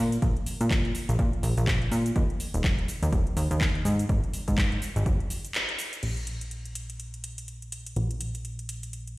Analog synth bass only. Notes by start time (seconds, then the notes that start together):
Already playing: A#2
0.22 A#1
0.61 A#2
1.09 A#1
1.19 A#2
1.43 A#1
1.57 A#1
1.92 A#2
2.16 D#2
2.54 D#1
3.03 D#2
3.13 D#1
3.37 D#2
3.51 D#2
3.85 G#2
4.09 G#1
4.48 G#2
4.96 G#1
5.06 F#1
6.03 A#1
7.96 A#1